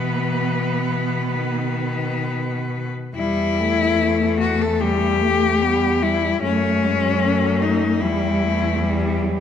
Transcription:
0.00 2.90 B2 medium
0.00 1.36 E3 medium
0.00 2.66 B3 medium
0.00 1.29 B4 medium
1.32 2.95 D#3 medium
1.32 2.91 B4 medium
3.15 6.39 E2 medium
3.15 3.61 G3 medium
3.15 3.94 G3 medium
3.15 4.35 E4 medium
3.59 4.83 A3 medium
3.97 5.57 A3 medium
4.40 4.63 F#4 medium
4.62 4.82 A4 medium
4.80 5.23 G3 medium
4.80 6.04 G4 medium
5.21 5.63 A3 medium
5.62 6.01 G3 medium
5.62 6.03 B3 medium
6.02 6.43 G3 medium
6.02 6.41 G3 medium
6.02 6.42 E4 medium
6.41 8.03 F#2 medium
6.41 6.84 A3 medium
6.41 7.63 C#4 medium
6.82 8.00 F#3 medium
6.82 7.23 G#3 medium
7.22 8.01 A3 medium
7.62 8.02 D#4 medium
7.99 9.40 E2 medium
7.99 8.42 G3 medium
7.99 8.80 G3 medium
7.99 9.22 E4 medium
8.41 8.82 A3 medium
8.81 9.40 G3 medium
8.81 9.23 G3 medium
9.22 9.40 F#3 medium

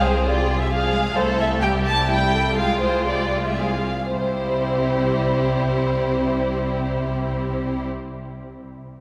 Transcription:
0.00 1.13 C2 soft
0.00 0.26 G#3 soft
0.00 0.26 G#4 medium
0.00 0.71 G#4 soft
0.05 0.27 C5 medium
0.27 0.71 G3 soft
0.27 0.70 F4 medium
0.27 0.61 D5 medium
0.61 0.72 E5 medium
0.71 0.94 F3 medium
0.71 1.16 G#4 medium
0.71 1.16 G#4 soft
0.71 1.16 F5 medium
0.94 1.17 G#3 soft
1.16 3.85 C2 medium
1.16 1.63 A3 soft
1.16 1.61 E4 soft
1.16 1.62 A4 medium
1.16 1.40 C5 medium
1.40 1.48 E5 medium
1.62 2.57 G3 soft
1.62 2.08 E4 soft
1.62 2.09 G4 medium
1.62 1.70 G5 medium
1.86 2.09 A5 medium
2.09 2.57 E4 soft
2.09 2.34 G4 soft
2.09 2.57 G5 medium
2.34 2.57 A4 medium
2.56 3.58 G#3 soft
2.56 3.56 F4 medium
2.56 3.07 G#4 soft
2.56 2.81 F5 medium
2.82 3.06 C5 medium
3.07 3.59 G4 soft
3.07 3.45 D5 soft
3.46 3.59 E5 soft
3.58 3.67 G#3 soft
3.58 3.89 F4 soft
3.58 3.85 G#4 soft
3.58 4.13 F5 soft
4.11 7.85 C2 soft
4.11 7.85 C3 soft
4.11 7.86 G3 soft
4.11 7.86 C4 soft
4.11 7.86 E4 soft
4.11 7.86 G4 soft
4.11 7.85 C5 medium

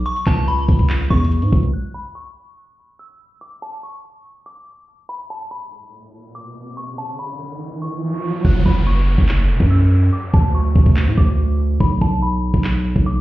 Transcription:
0.06 0.24 C#6 medium
0.06 closed hi-hat medium
0.16 closed hi-hat medium
0.27 0.67 C#2 loud
0.27 0.45 A5 medium
0.27 kick loud
0.27 clap medium
0.27 closed hi-hat medium
0.37 closed hi-hat medium
0.48 1.07 B5 medium
0.48 closed hi-hat medium
0.59 closed hi-hat medium
0.68 1.09 C#2 loud
0.68 kick loud
0.68 open hi-hat medium
0.79 kick loud
0.90 clap loud
0.90 closed hi-hat medium
1.00 closed hi-hat medium
1.10 1.43 E2 loud
1.10 1.70 C#6 medium
1.10 kick medium
1.10 closed hi-hat medium
1.17 closed hi-hat medium
1.24 closed hi-hat medium
1.32 closed hi-hat medium
1.42 1.52 G#2 loud
1.42 closed hi-hat medium
1.52 1.73 C#2 loud
1.52 kick loud
1.52 closed hi-hat medium
1.63 closed hi-hat soft
1.73 1.91 F#6 loud
1.94 2.12 B5 medium
2.15 2.95 C#6 medium
2.99 3.39 E6 medium
3.41 3.59 D6 medium
3.62 3.80 A5 medium
3.83 4.42 C#6 medium
4.46 5.05 D6 medium
5.09 5.27 B5 medium
5.09 riser medium
5.30 5.48 A5 medium
5.51 6.31 B5 medium
6.35 6.74 D6 medium
6.77 6.95 C#6 medium
6.98 7.16 A5 medium
7.19 7.78 B5 medium
7.82 8.41 C#6 medium
8.45 8.65 F#1 loud
8.45 8.63 F#6 loud
8.45 kick loud
8.45 crash medium
8.45 downlifter medium
8.66 9.16 F#1 loud
8.66 8.84 B5 medium
8.66 kick medium
8.87 9.67 C#6 medium
9.18 9.51 F#1 loud
9.18 kick loud
9.29 clap loud
9.50 9.60 E1 loud
9.60 10.11 F#2 loud
9.60 kick loud
9.71 10.10 E6 medium
10.13 10.31 D6 medium
10.34 10.74 D2 loud
10.34 10.52 A5 medium
10.34 kick medium
10.55 11.14 C#6 medium
10.76 10.86 D2 loud
10.76 kick loud
10.86 11.09 D2 loud
10.86 kick medium
10.97 clap loud
11.07 11.17 A2 loud
11.17 11.78 D2 loud
11.17 11.77 D6 medium
11.17 kick medium
11.80 12.01 B1 loud
11.80 11.98 B5 medium
11.80 kick loud
12.01 12.52 B1 loud
12.01 12.19 A5 medium
12.01 kick loud
12.22 13.02 B5 medium
12.54 12.94 B1 loud
12.54 kick medium
12.64 clap loud
12.96 13.21 B1 loud
12.96 kick medium
13.06 13.21 D6 medium

